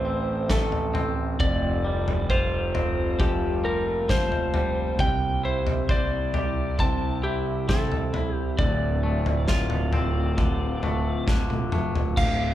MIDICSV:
0, 0, Header, 1, 6, 480
1, 0, Start_track
1, 0, Key_signature, -1, "minor"
1, 0, Tempo, 898204
1, 746, Time_signature, 4, 2, 24, 8
1, 6701, End_track
2, 0, Start_track
2, 0, Title_t, "Electric slide guitar"
2, 0, Program_c, 0, 29
2, 0, Note_on_c, 0, 72, 62
2, 271, Note_on_c, 0, 69, 71
2, 281, Note_off_c, 0, 72, 0
2, 607, Note_off_c, 0, 69, 0
2, 750, Note_on_c, 0, 74, 72
2, 1228, Note_off_c, 0, 74, 0
2, 1230, Note_on_c, 0, 72, 60
2, 1710, Note_on_c, 0, 67, 69
2, 1723, Note_off_c, 0, 72, 0
2, 1949, Note_on_c, 0, 70, 61
2, 1956, Note_off_c, 0, 67, 0
2, 2193, Note_on_c, 0, 72, 75
2, 2196, Note_off_c, 0, 70, 0
2, 2674, Note_on_c, 0, 79, 72
2, 2685, Note_off_c, 0, 72, 0
2, 2894, Note_off_c, 0, 79, 0
2, 2912, Note_on_c, 0, 72, 59
2, 3157, Note_off_c, 0, 72, 0
2, 3157, Note_on_c, 0, 74, 68
2, 3634, Note_on_c, 0, 81, 77
2, 3647, Note_off_c, 0, 74, 0
2, 3854, Note_off_c, 0, 81, 0
2, 3867, Note_on_c, 0, 67, 55
2, 4108, Note_off_c, 0, 67, 0
2, 4110, Note_on_c, 0, 69, 71
2, 4463, Note_off_c, 0, 69, 0
2, 4463, Note_on_c, 0, 67, 71
2, 4588, Note_on_c, 0, 74, 65
2, 4603, Note_off_c, 0, 67, 0
2, 6004, Note_off_c, 0, 74, 0
2, 6506, Note_on_c, 0, 77, 71
2, 6701, Note_off_c, 0, 77, 0
2, 6701, End_track
3, 0, Start_track
3, 0, Title_t, "Ambient pad"
3, 0, Program_c, 1, 92
3, 0, Note_on_c, 1, 57, 63
3, 0, Note_on_c, 1, 60, 62
3, 0, Note_on_c, 1, 64, 80
3, 722, Note_off_c, 1, 57, 0
3, 728, Note_off_c, 1, 64, 0
3, 745, Note_on_c, 1, 55, 77
3, 750, Note_on_c, 1, 65, 77
3, 1684, Note_off_c, 1, 60, 0
3, 1702, Note_on_c, 1, 58, 59
3, 2651, Note_off_c, 1, 65, 0
3, 2656, Note_off_c, 1, 58, 0
3, 2672, Note_on_c, 1, 48, 76
3, 2672, Note_on_c, 1, 62, 64
3, 2673, Note_on_c, 1, 64, 80
3, 3620, Note_off_c, 1, 62, 0
3, 3631, Note_on_c, 1, 60, 61
3, 4565, Note_off_c, 1, 55, 0
3, 4570, Note_off_c, 1, 48, 0
3, 4570, Note_off_c, 1, 64, 0
3, 4590, Note_on_c, 1, 57, 61
3, 4590, Note_on_c, 1, 65, 74
3, 4592, Note_on_c, 1, 50, 75
3, 6484, Note_off_c, 1, 60, 0
3, 6486, Note_off_c, 1, 57, 0
3, 6486, Note_off_c, 1, 65, 0
3, 6487, Note_off_c, 1, 50, 0
3, 6701, End_track
4, 0, Start_track
4, 0, Title_t, "Clean electric guitar"
4, 0, Program_c, 2, 27
4, 0, Note_on_c, 2, 57, 52
4, 0, Note_on_c, 2, 64, 45
4, 0, Note_on_c, 2, 69, 47
4, 26, Note_on_c, 2, 60, 45
4, 260, Note_off_c, 2, 57, 0
4, 266, Note_on_c, 2, 57, 52
4, 498, Note_off_c, 2, 60, 0
4, 500, Note_on_c, 2, 60, 52
4, 510, Note_off_c, 2, 69, 0
4, 747, Note_off_c, 2, 57, 0
4, 748, Note_off_c, 2, 64, 0
4, 750, Note_on_c, 2, 41, 60
4, 984, Note_off_c, 2, 60, 0
4, 986, Note_on_c, 2, 55, 53
4, 1232, Note_on_c, 2, 65, 60
4, 1466, Note_on_c, 2, 60, 52
4, 1709, Note_on_c, 2, 53, 50
4, 1938, Note_off_c, 2, 55, 0
4, 1945, Note_on_c, 2, 55, 53
4, 1949, Note_off_c, 2, 41, 0
4, 2179, Note_off_c, 2, 53, 0
4, 2186, Note_on_c, 2, 53, 56
4, 2419, Note_off_c, 2, 55, 0
4, 2425, Note_on_c, 2, 55, 52
4, 2431, Note_off_c, 2, 65, 0
4, 2666, Note_on_c, 2, 48, 56
4, 2667, Note_off_c, 2, 53, 0
4, 2667, Note_off_c, 2, 55, 0
4, 2905, Note_on_c, 2, 64, 50
4, 3148, Note_on_c, 2, 72, 58
4, 3336, Note_off_c, 2, 60, 0
4, 3387, Note_on_c, 2, 67, 54
4, 3628, Note_on_c, 2, 60, 60
4, 3859, Note_off_c, 2, 64, 0
4, 3865, Note_on_c, 2, 64, 56
4, 3866, Note_off_c, 2, 48, 0
4, 4104, Note_off_c, 2, 60, 0
4, 4106, Note_on_c, 2, 60, 60
4, 4341, Note_off_c, 2, 64, 0
4, 4347, Note_on_c, 2, 64, 53
4, 4586, Note_off_c, 2, 67, 0
4, 4587, Note_off_c, 2, 64, 0
4, 4587, Note_on_c, 2, 38, 58
4, 4603, Note_off_c, 2, 60, 0
4, 4603, Note_off_c, 2, 72, 0
4, 4827, Note_on_c, 2, 57, 55
4, 5068, Note_on_c, 2, 65, 60
4, 5306, Note_on_c, 2, 60, 57
4, 5545, Note_on_c, 2, 50, 54
4, 5780, Note_off_c, 2, 57, 0
4, 5785, Note_off_c, 2, 38, 0
4, 5786, Note_on_c, 2, 57, 52
4, 6019, Note_off_c, 2, 50, 0
4, 6025, Note_on_c, 2, 50, 57
4, 6258, Note_off_c, 2, 57, 0
4, 6264, Note_on_c, 2, 57, 50
4, 6265, Note_off_c, 2, 65, 0
4, 6504, Note_off_c, 2, 50, 0
4, 6504, Note_off_c, 2, 57, 0
4, 6504, Note_off_c, 2, 60, 0
4, 6505, Note_on_c, 2, 38, 50
4, 6701, Note_off_c, 2, 38, 0
4, 6701, End_track
5, 0, Start_track
5, 0, Title_t, "Fingered electric bass"
5, 0, Program_c, 3, 33
5, 0, Note_on_c, 3, 33, 63
5, 725, Note_off_c, 3, 33, 0
5, 748, Note_on_c, 3, 29, 65
5, 2647, Note_off_c, 3, 29, 0
5, 2665, Note_on_c, 3, 36, 69
5, 4564, Note_off_c, 3, 36, 0
5, 4588, Note_on_c, 3, 26, 60
5, 6483, Note_off_c, 3, 26, 0
5, 6504, Note_on_c, 3, 26, 65
5, 6701, Note_off_c, 3, 26, 0
5, 6701, End_track
6, 0, Start_track
6, 0, Title_t, "Drums"
6, 264, Note_on_c, 9, 38, 61
6, 264, Note_on_c, 9, 47, 58
6, 265, Note_on_c, 9, 36, 89
6, 317, Note_off_c, 9, 38, 0
6, 317, Note_off_c, 9, 47, 0
6, 319, Note_off_c, 9, 36, 0
6, 386, Note_on_c, 9, 43, 49
6, 439, Note_off_c, 9, 43, 0
6, 507, Note_on_c, 9, 43, 75
6, 560, Note_off_c, 9, 43, 0
6, 747, Note_on_c, 9, 36, 78
6, 748, Note_on_c, 9, 43, 65
6, 801, Note_off_c, 9, 36, 0
6, 802, Note_off_c, 9, 43, 0
6, 1110, Note_on_c, 9, 43, 55
6, 1164, Note_off_c, 9, 43, 0
6, 1228, Note_on_c, 9, 36, 84
6, 1281, Note_off_c, 9, 36, 0
6, 1469, Note_on_c, 9, 43, 68
6, 1522, Note_off_c, 9, 43, 0
6, 1708, Note_on_c, 9, 36, 82
6, 1710, Note_on_c, 9, 43, 66
6, 1761, Note_off_c, 9, 36, 0
6, 1764, Note_off_c, 9, 43, 0
6, 2188, Note_on_c, 9, 36, 83
6, 2189, Note_on_c, 9, 38, 58
6, 2189, Note_on_c, 9, 47, 61
6, 2241, Note_off_c, 9, 36, 0
6, 2242, Note_off_c, 9, 38, 0
6, 2242, Note_off_c, 9, 47, 0
6, 2308, Note_on_c, 9, 43, 51
6, 2361, Note_off_c, 9, 43, 0
6, 2425, Note_on_c, 9, 43, 68
6, 2478, Note_off_c, 9, 43, 0
6, 2666, Note_on_c, 9, 43, 67
6, 2668, Note_on_c, 9, 36, 91
6, 2720, Note_off_c, 9, 43, 0
6, 2721, Note_off_c, 9, 36, 0
6, 3028, Note_on_c, 9, 43, 64
6, 3081, Note_off_c, 9, 43, 0
6, 3148, Note_on_c, 9, 36, 84
6, 3202, Note_off_c, 9, 36, 0
6, 3388, Note_on_c, 9, 43, 60
6, 3441, Note_off_c, 9, 43, 0
6, 3627, Note_on_c, 9, 43, 59
6, 3629, Note_on_c, 9, 36, 82
6, 3681, Note_off_c, 9, 43, 0
6, 3682, Note_off_c, 9, 36, 0
6, 4109, Note_on_c, 9, 36, 92
6, 4110, Note_on_c, 9, 38, 59
6, 4110, Note_on_c, 9, 47, 66
6, 4162, Note_off_c, 9, 36, 0
6, 4164, Note_off_c, 9, 38, 0
6, 4164, Note_off_c, 9, 47, 0
6, 4230, Note_on_c, 9, 43, 50
6, 4284, Note_off_c, 9, 43, 0
6, 4349, Note_on_c, 9, 43, 66
6, 4403, Note_off_c, 9, 43, 0
6, 4588, Note_on_c, 9, 36, 77
6, 4589, Note_on_c, 9, 43, 64
6, 4642, Note_off_c, 9, 36, 0
6, 4642, Note_off_c, 9, 43, 0
6, 4949, Note_on_c, 9, 43, 59
6, 5002, Note_off_c, 9, 43, 0
6, 5064, Note_on_c, 9, 38, 59
6, 5067, Note_on_c, 9, 36, 76
6, 5118, Note_off_c, 9, 38, 0
6, 5121, Note_off_c, 9, 36, 0
6, 5183, Note_on_c, 9, 43, 64
6, 5236, Note_off_c, 9, 43, 0
6, 5304, Note_on_c, 9, 43, 61
6, 5358, Note_off_c, 9, 43, 0
6, 5547, Note_on_c, 9, 36, 94
6, 5547, Note_on_c, 9, 43, 71
6, 5600, Note_off_c, 9, 43, 0
6, 5601, Note_off_c, 9, 36, 0
6, 5787, Note_on_c, 9, 43, 56
6, 5840, Note_off_c, 9, 43, 0
6, 6026, Note_on_c, 9, 36, 88
6, 6027, Note_on_c, 9, 38, 41
6, 6079, Note_off_c, 9, 36, 0
6, 6080, Note_off_c, 9, 38, 0
6, 6146, Note_on_c, 9, 48, 40
6, 6200, Note_off_c, 9, 48, 0
6, 6264, Note_on_c, 9, 45, 65
6, 6318, Note_off_c, 9, 45, 0
6, 6389, Note_on_c, 9, 43, 63
6, 6442, Note_off_c, 9, 43, 0
6, 6504, Note_on_c, 9, 43, 62
6, 6504, Note_on_c, 9, 49, 73
6, 6505, Note_on_c, 9, 36, 81
6, 6558, Note_off_c, 9, 36, 0
6, 6558, Note_off_c, 9, 43, 0
6, 6558, Note_off_c, 9, 49, 0
6, 6701, End_track
0, 0, End_of_file